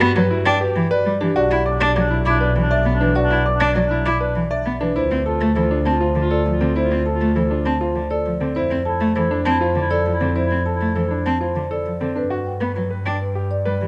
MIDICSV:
0, 0, Header, 1, 6, 480
1, 0, Start_track
1, 0, Key_signature, 1, "major"
1, 0, Tempo, 600000
1, 1086, Time_signature, 3, 2, 24, 8
1, 11101, End_track
2, 0, Start_track
2, 0, Title_t, "Marimba"
2, 0, Program_c, 0, 12
2, 127, Note_on_c, 0, 71, 85
2, 282, Note_off_c, 0, 71, 0
2, 367, Note_on_c, 0, 79, 111
2, 485, Note_on_c, 0, 71, 81
2, 522, Note_off_c, 0, 79, 0
2, 642, Note_off_c, 0, 71, 0
2, 727, Note_on_c, 0, 74, 101
2, 882, Note_off_c, 0, 74, 0
2, 966, Note_on_c, 0, 67, 87
2, 1088, Note_on_c, 0, 74, 103
2, 1122, Note_off_c, 0, 67, 0
2, 1243, Note_off_c, 0, 74, 0
2, 1327, Note_on_c, 0, 86, 86
2, 1482, Note_off_c, 0, 86, 0
2, 1567, Note_on_c, 0, 74, 80
2, 1723, Note_off_c, 0, 74, 0
2, 1808, Note_on_c, 0, 86, 103
2, 1926, Note_on_c, 0, 74, 79
2, 1963, Note_off_c, 0, 86, 0
2, 2082, Note_off_c, 0, 74, 0
2, 2166, Note_on_c, 0, 76, 107
2, 2322, Note_off_c, 0, 76, 0
2, 2404, Note_on_c, 0, 71, 85
2, 2524, Note_on_c, 0, 74, 98
2, 2561, Note_off_c, 0, 71, 0
2, 2681, Note_off_c, 0, 74, 0
2, 2766, Note_on_c, 0, 86, 80
2, 2922, Note_off_c, 0, 86, 0
2, 3009, Note_on_c, 0, 74, 73
2, 3163, Note_off_c, 0, 74, 0
2, 3247, Note_on_c, 0, 86, 93
2, 3367, Note_on_c, 0, 74, 74
2, 3402, Note_off_c, 0, 86, 0
2, 3522, Note_off_c, 0, 74, 0
2, 3604, Note_on_c, 0, 76, 90
2, 3761, Note_off_c, 0, 76, 0
2, 3848, Note_on_c, 0, 71, 74
2, 3967, Note_on_c, 0, 72, 85
2, 4003, Note_off_c, 0, 71, 0
2, 4122, Note_off_c, 0, 72, 0
2, 4208, Note_on_c, 0, 81, 77
2, 4363, Note_off_c, 0, 81, 0
2, 4449, Note_on_c, 0, 72, 66
2, 4603, Note_off_c, 0, 72, 0
2, 4686, Note_on_c, 0, 81, 88
2, 4806, Note_on_c, 0, 72, 69
2, 4842, Note_off_c, 0, 81, 0
2, 4962, Note_off_c, 0, 72, 0
2, 5046, Note_on_c, 0, 74, 89
2, 5202, Note_off_c, 0, 74, 0
2, 5287, Note_on_c, 0, 69, 75
2, 5406, Note_on_c, 0, 72, 89
2, 5442, Note_off_c, 0, 69, 0
2, 5562, Note_off_c, 0, 72, 0
2, 5645, Note_on_c, 0, 81, 70
2, 5802, Note_off_c, 0, 81, 0
2, 5888, Note_on_c, 0, 72, 64
2, 6043, Note_off_c, 0, 72, 0
2, 6128, Note_on_c, 0, 81, 84
2, 6246, Note_on_c, 0, 72, 60
2, 6283, Note_off_c, 0, 81, 0
2, 6402, Note_off_c, 0, 72, 0
2, 6484, Note_on_c, 0, 74, 89
2, 6641, Note_off_c, 0, 74, 0
2, 6724, Note_on_c, 0, 69, 67
2, 6840, Note_on_c, 0, 72, 83
2, 6881, Note_off_c, 0, 69, 0
2, 7000, Note_off_c, 0, 72, 0
2, 7082, Note_on_c, 0, 81, 75
2, 7241, Note_off_c, 0, 81, 0
2, 7323, Note_on_c, 0, 72, 73
2, 7481, Note_off_c, 0, 72, 0
2, 7564, Note_on_c, 0, 81, 104
2, 7685, Note_on_c, 0, 72, 75
2, 7721, Note_off_c, 0, 81, 0
2, 7842, Note_off_c, 0, 72, 0
2, 7924, Note_on_c, 0, 74, 97
2, 8081, Note_off_c, 0, 74, 0
2, 8167, Note_on_c, 0, 69, 69
2, 8285, Note_on_c, 0, 72, 73
2, 8322, Note_off_c, 0, 69, 0
2, 8442, Note_off_c, 0, 72, 0
2, 8526, Note_on_c, 0, 81, 65
2, 8682, Note_off_c, 0, 81, 0
2, 8764, Note_on_c, 0, 72, 60
2, 8921, Note_off_c, 0, 72, 0
2, 9008, Note_on_c, 0, 81, 77
2, 9130, Note_on_c, 0, 72, 63
2, 9163, Note_off_c, 0, 81, 0
2, 9283, Note_off_c, 0, 72, 0
2, 9369, Note_on_c, 0, 74, 73
2, 9523, Note_off_c, 0, 74, 0
2, 9611, Note_on_c, 0, 69, 67
2, 9734, Note_on_c, 0, 71, 77
2, 9764, Note_off_c, 0, 69, 0
2, 9885, Note_off_c, 0, 71, 0
2, 9972, Note_on_c, 0, 79, 60
2, 10124, Note_off_c, 0, 79, 0
2, 10212, Note_on_c, 0, 71, 55
2, 10364, Note_off_c, 0, 71, 0
2, 10448, Note_on_c, 0, 79, 75
2, 10568, Note_on_c, 0, 71, 57
2, 10603, Note_off_c, 0, 79, 0
2, 10723, Note_off_c, 0, 71, 0
2, 10806, Note_on_c, 0, 74, 79
2, 10962, Note_off_c, 0, 74, 0
2, 11051, Note_on_c, 0, 67, 61
2, 11101, Note_off_c, 0, 67, 0
2, 11101, End_track
3, 0, Start_track
3, 0, Title_t, "Grand piano"
3, 0, Program_c, 1, 0
3, 125, Note_on_c, 1, 71, 87
3, 245, Note_on_c, 1, 64, 79
3, 282, Note_off_c, 1, 71, 0
3, 402, Note_off_c, 1, 64, 0
3, 486, Note_on_c, 1, 67, 83
3, 642, Note_off_c, 1, 67, 0
3, 726, Note_on_c, 1, 71, 98
3, 882, Note_off_c, 1, 71, 0
3, 967, Note_on_c, 1, 62, 84
3, 1086, Note_on_c, 1, 66, 107
3, 1122, Note_off_c, 1, 62, 0
3, 1242, Note_off_c, 1, 66, 0
3, 1325, Note_on_c, 1, 74, 81
3, 1482, Note_off_c, 1, 74, 0
3, 1567, Note_on_c, 1, 74, 83
3, 1685, Note_on_c, 1, 64, 75
3, 1722, Note_off_c, 1, 74, 0
3, 1842, Note_off_c, 1, 64, 0
3, 1924, Note_on_c, 1, 71, 81
3, 2081, Note_off_c, 1, 71, 0
3, 2166, Note_on_c, 1, 74, 94
3, 2322, Note_off_c, 1, 74, 0
3, 2404, Note_on_c, 1, 62, 78
3, 2526, Note_on_c, 1, 66, 94
3, 2561, Note_off_c, 1, 62, 0
3, 2682, Note_off_c, 1, 66, 0
3, 2765, Note_on_c, 1, 74, 75
3, 2922, Note_off_c, 1, 74, 0
3, 3007, Note_on_c, 1, 74, 81
3, 3126, Note_on_c, 1, 64, 80
3, 3162, Note_off_c, 1, 74, 0
3, 3282, Note_off_c, 1, 64, 0
3, 3364, Note_on_c, 1, 71, 74
3, 3521, Note_off_c, 1, 71, 0
3, 3606, Note_on_c, 1, 74, 92
3, 3762, Note_off_c, 1, 74, 0
3, 3845, Note_on_c, 1, 62, 78
3, 3966, Note_on_c, 1, 64, 84
3, 4002, Note_off_c, 1, 62, 0
3, 4122, Note_off_c, 1, 64, 0
3, 4206, Note_on_c, 1, 69, 68
3, 4362, Note_off_c, 1, 69, 0
3, 4448, Note_on_c, 1, 69, 70
3, 4566, Note_on_c, 1, 62, 74
3, 4603, Note_off_c, 1, 69, 0
3, 4722, Note_off_c, 1, 62, 0
3, 4805, Note_on_c, 1, 65, 68
3, 4962, Note_off_c, 1, 65, 0
3, 5046, Note_on_c, 1, 69, 87
3, 5202, Note_off_c, 1, 69, 0
3, 5286, Note_on_c, 1, 60, 72
3, 5407, Note_on_c, 1, 64, 83
3, 5442, Note_off_c, 1, 60, 0
3, 5562, Note_off_c, 1, 64, 0
3, 5646, Note_on_c, 1, 69, 62
3, 5802, Note_off_c, 1, 69, 0
3, 5886, Note_on_c, 1, 69, 70
3, 6007, Note_on_c, 1, 62, 63
3, 6042, Note_off_c, 1, 69, 0
3, 6162, Note_off_c, 1, 62, 0
3, 6247, Note_on_c, 1, 65, 67
3, 6402, Note_off_c, 1, 65, 0
3, 6486, Note_on_c, 1, 69, 82
3, 6642, Note_off_c, 1, 69, 0
3, 6727, Note_on_c, 1, 60, 68
3, 6848, Note_on_c, 1, 64, 89
3, 6882, Note_off_c, 1, 60, 0
3, 7003, Note_off_c, 1, 64, 0
3, 7088, Note_on_c, 1, 69, 65
3, 7243, Note_off_c, 1, 69, 0
3, 7326, Note_on_c, 1, 69, 74
3, 7447, Note_on_c, 1, 62, 78
3, 7482, Note_off_c, 1, 69, 0
3, 7602, Note_off_c, 1, 62, 0
3, 7687, Note_on_c, 1, 65, 80
3, 7842, Note_off_c, 1, 65, 0
3, 7925, Note_on_c, 1, 69, 94
3, 8082, Note_off_c, 1, 69, 0
3, 8165, Note_on_c, 1, 60, 69
3, 8285, Note_on_c, 1, 64, 78
3, 8322, Note_off_c, 1, 60, 0
3, 8442, Note_off_c, 1, 64, 0
3, 8525, Note_on_c, 1, 69, 58
3, 8682, Note_off_c, 1, 69, 0
3, 8764, Note_on_c, 1, 69, 67
3, 8886, Note_on_c, 1, 62, 62
3, 8921, Note_off_c, 1, 69, 0
3, 9042, Note_off_c, 1, 62, 0
3, 9126, Note_on_c, 1, 65, 60
3, 9282, Note_off_c, 1, 65, 0
3, 9366, Note_on_c, 1, 69, 78
3, 9522, Note_off_c, 1, 69, 0
3, 9606, Note_on_c, 1, 60, 62
3, 9724, Note_on_c, 1, 62, 60
3, 9762, Note_off_c, 1, 60, 0
3, 9843, Note_on_c, 1, 66, 77
3, 9881, Note_off_c, 1, 62, 0
3, 10001, Note_off_c, 1, 66, 0
3, 10082, Note_on_c, 1, 71, 59
3, 10241, Note_off_c, 1, 71, 0
3, 10324, Note_on_c, 1, 71, 59
3, 10481, Note_off_c, 1, 71, 0
3, 10683, Note_on_c, 1, 67, 62
3, 10841, Note_off_c, 1, 67, 0
3, 10924, Note_on_c, 1, 71, 76
3, 11081, Note_off_c, 1, 71, 0
3, 11101, End_track
4, 0, Start_track
4, 0, Title_t, "Clarinet"
4, 0, Program_c, 2, 71
4, 0, Note_on_c, 2, 66, 96
4, 141, Note_off_c, 2, 66, 0
4, 217, Note_on_c, 2, 66, 81
4, 391, Note_off_c, 2, 66, 0
4, 470, Note_on_c, 2, 66, 62
4, 644, Note_off_c, 2, 66, 0
4, 724, Note_on_c, 2, 66, 48
4, 896, Note_off_c, 2, 66, 0
4, 1093, Note_on_c, 2, 62, 51
4, 1266, Note_off_c, 2, 62, 0
4, 1342, Note_on_c, 2, 62, 62
4, 1516, Note_off_c, 2, 62, 0
4, 1589, Note_on_c, 2, 62, 85
4, 1764, Note_off_c, 2, 62, 0
4, 1835, Note_on_c, 2, 62, 86
4, 2012, Note_off_c, 2, 62, 0
4, 2091, Note_on_c, 2, 62, 86
4, 2266, Note_off_c, 2, 62, 0
4, 2340, Note_on_c, 2, 62, 92
4, 2516, Note_off_c, 2, 62, 0
4, 2590, Note_on_c, 2, 62, 98
4, 2766, Note_off_c, 2, 62, 0
4, 2837, Note_on_c, 2, 62, 82
4, 3015, Note_off_c, 2, 62, 0
4, 3089, Note_on_c, 2, 62, 74
4, 3266, Note_off_c, 2, 62, 0
4, 3341, Note_on_c, 2, 62, 58
4, 3518, Note_off_c, 2, 62, 0
4, 3591, Note_on_c, 2, 62, 45
4, 3768, Note_off_c, 2, 62, 0
4, 3964, Note_on_c, 2, 65, 44
4, 4140, Note_off_c, 2, 65, 0
4, 4213, Note_on_c, 2, 65, 60
4, 4390, Note_off_c, 2, 65, 0
4, 4461, Note_on_c, 2, 65, 70
4, 4639, Note_off_c, 2, 65, 0
4, 4712, Note_on_c, 2, 65, 71
4, 4890, Note_off_c, 2, 65, 0
4, 4964, Note_on_c, 2, 65, 84
4, 5142, Note_off_c, 2, 65, 0
4, 5214, Note_on_c, 2, 65, 73
4, 5392, Note_off_c, 2, 65, 0
4, 5468, Note_on_c, 2, 65, 81
4, 5645, Note_off_c, 2, 65, 0
4, 5714, Note_on_c, 2, 65, 75
4, 5892, Note_off_c, 2, 65, 0
4, 5967, Note_on_c, 2, 65, 68
4, 6145, Note_off_c, 2, 65, 0
4, 6220, Note_on_c, 2, 65, 51
4, 6397, Note_off_c, 2, 65, 0
4, 6473, Note_on_c, 2, 65, 40
4, 6650, Note_off_c, 2, 65, 0
4, 6844, Note_on_c, 2, 64, 43
4, 7021, Note_off_c, 2, 64, 0
4, 7094, Note_on_c, 2, 64, 60
4, 7271, Note_off_c, 2, 64, 0
4, 7344, Note_on_c, 2, 64, 69
4, 7521, Note_off_c, 2, 64, 0
4, 7593, Note_on_c, 2, 64, 83
4, 7771, Note_off_c, 2, 64, 0
4, 7840, Note_on_c, 2, 64, 85
4, 8019, Note_off_c, 2, 64, 0
4, 8094, Note_on_c, 2, 64, 81
4, 8272, Note_off_c, 2, 64, 0
4, 8348, Note_on_c, 2, 64, 79
4, 8525, Note_off_c, 2, 64, 0
4, 8597, Note_on_c, 2, 64, 69
4, 8775, Note_off_c, 2, 64, 0
4, 8848, Note_on_c, 2, 64, 62
4, 9025, Note_off_c, 2, 64, 0
4, 9099, Note_on_c, 2, 64, 48
4, 9277, Note_off_c, 2, 64, 0
4, 9353, Note_on_c, 2, 64, 38
4, 9529, Note_off_c, 2, 64, 0
4, 11101, End_track
5, 0, Start_track
5, 0, Title_t, "Cello"
5, 0, Program_c, 3, 42
5, 3, Note_on_c, 3, 59, 111
5, 94, Note_off_c, 3, 59, 0
5, 124, Note_on_c, 3, 54, 93
5, 215, Note_off_c, 3, 54, 0
5, 364, Note_on_c, 3, 62, 109
5, 455, Note_off_c, 3, 62, 0
5, 605, Note_on_c, 3, 52, 93
5, 695, Note_off_c, 3, 52, 0
5, 845, Note_on_c, 3, 55, 79
5, 936, Note_off_c, 3, 55, 0
5, 966, Note_on_c, 3, 52, 89
5, 1056, Note_off_c, 3, 52, 0
5, 1207, Note_on_c, 3, 64, 85
5, 1296, Note_off_c, 3, 64, 0
5, 1444, Note_on_c, 3, 62, 104
5, 1535, Note_off_c, 3, 62, 0
5, 1565, Note_on_c, 3, 54, 86
5, 1655, Note_off_c, 3, 54, 0
5, 1804, Note_on_c, 3, 64, 91
5, 1895, Note_off_c, 3, 64, 0
5, 2046, Note_on_c, 3, 52, 82
5, 2136, Note_off_c, 3, 52, 0
5, 2285, Note_on_c, 3, 59, 73
5, 2376, Note_off_c, 3, 59, 0
5, 2405, Note_on_c, 3, 52, 81
5, 2495, Note_off_c, 3, 52, 0
5, 2643, Note_on_c, 3, 64, 74
5, 2734, Note_off_c, 3, 64, 0
5, 2882, Note_on_c, 3, 62, 98
5, 2974, Note_off_c, 3, 62, 0
5, 3003, Note_on_c, 3, 54, 78
5, 3094, Note_off_c, 3, 54, 0
5, 3245, Note_on_c, 3, 64, 90
5, 3335, Note_off_c, 3, 64, 0
5, 3486, Note_on_c, 3, 52, 80
5, 3576, Note_off_c, 3, 52, 0
5, 3726, Note_on_c, 3, 59, 69
5, 3816, Note_off_c, 3, 59, 0
5, 3845, Note_on_c, 3, 52, 70
5, 3935, Note_off_c, 3, 52, 0
5, 4088, Note_on_c, 3, 60, 76
5, 4177, Note_off_c, 3, 60, 0
5, 4325, Note_on_c, 3, 57, 95
5, 4415, Note_off_c, 3, 57, 0
5, 4445, Note_on_c, 3, 52, 75
5, 4536, Note_off_c, 3, 52, 0
5, 4684, Note_on_c, 3, 60, 80
5, 4775, Note_off_c, 3, 60, 0
5, 4923, Note_on_c, 3, 50, 74
5, 5014, Note_off_c, 3, 50, 0
5, 5166, Note_on_c, 3, 53, 68
5, 5256, Note_off_c, 3, 53, 0
5, 5286, Note_on_c, 3, 50, 71
5, 5376, Note_off_c, 3, 50, 0
5, 5527, Note_on_c, 3, 60, 69
5, 5616, Note_off_c, 3, 60, 0
5, 5766, Note_on_c, 3, 57, 85
5, 5856, Note_off_c, 3, 57, 0
5, 5886, Note_on_c, 3, 52, 71
5, 5976, Note_off_c, 3, 52, 0
5, 6124, Note_on_c, 3, 60, 83
5, 6214, Note_off_c, 3, 60, 0
5, 6365, Note_on_c, 3, 50, 64
5, 6456, Note_off_c, 3, 50, 0
5, 6606, Note_on_c, 3, 53, 70
5, 6696, Note_off_c, 3, 53, 0
5, 6725, Note_on_c, 3, 50, 67
5, 6815, Note_off_c, 3, 50, 0
5, 6965, Note_on_c, 3, 60, 74
5, 7055, Note_off_c, 3, 60, 0
5, 7205, Note_on_c, 3, 57, 96
5, 7296, Note_off_c, 3, 57, 0
5, 7326, Note_on_c, 3, 52, 73
5, 7416, Note_off_c, 3, 52, 0
5, 7565, Note_on_c, 3, 60, 97
5, 7655, Note_off_c, 3, 60, 0
5, 7806, Note_on_c, 3, 50, 76
5, 7896, Note_off_c, 3, 50, 0
5, 8047, Note_on_c, 3, 53, 76
5, 8137, Note_off_c, 3, 53, 0
5, 8166, Note_on_c, 3, 50, 70
5, 8256, Note_off_c, 3, 50, 0
5, 8407, Note_on_c, 3, 60, 66
5, 8497, Note_off_c, 3, 60, 0
5, 8647, Note_on_c, 3, 57, 81
5, 8737, Note_off_c, 3, 57, 0
5, 8766, Note_on_c, 3, 52, 63
5, 8856, Note_off_c, 3, 52, 0
5, 9008, Note_on_c, 3, 60, 82
5, 9097, Note_off_c, 3, 60, 0
5, 9246, Note_on_c, 3, 50, 68
5, 9336, Note_off_c, 3, 50, 0
5, 9486, Note_on_c, 3, 53, 60
5, 9576, Note_off_c, 3, 53, 0
5, 9605, Note_on_c, 3, 50, 64
5, 9695, Note_off_c, 3, 50, 0
5, 10085, Note_on_c, 3, 59, 76
5, 10175, Note_off_c, 3, 59, 0
5, 10207, Note_on_c, 3, 54, 59
5, 10296, Note_off_c, 3, 54, 0
5, 10446, Note_on_c, 3, 62, 74
5, 10536, Note_off_c, 3, 62, 0
5, 10927, Note_on_c, 3, 55, 63
5, 11017, Note_off_c, 3, 55, 0
5, 11047, Note_on_c, 3, 52, 66
5, 11101, Note_off_c, 3, 52, 0
5, 11101, End_track
6, 0, Start_track
6, 0, Title_t, "Double bass"
6, 0, Program_c, 4, 43
6, 0, Note_on_c, 4, 43, 88
6, 957, Note_off_c, 4, 43, 0
6, 1084, Note_on_c, 4, 35, 93
6, 3837, Note_off_c, 4, 35, 0
6, 3963, Note_on_c, 4, 38, 78
6, 6717, Note_off_c, 4, 38, 0
6, 6845, Note_on_c, 4, 41, 72
6, 9597, Note_off_c, 4, 41, 0
6, 9724, Note_on_c, 4, 43, 65
6, 11101, Note_off_c, 4, 43, 0
6, 11101, End_track
0, 0, End_of_file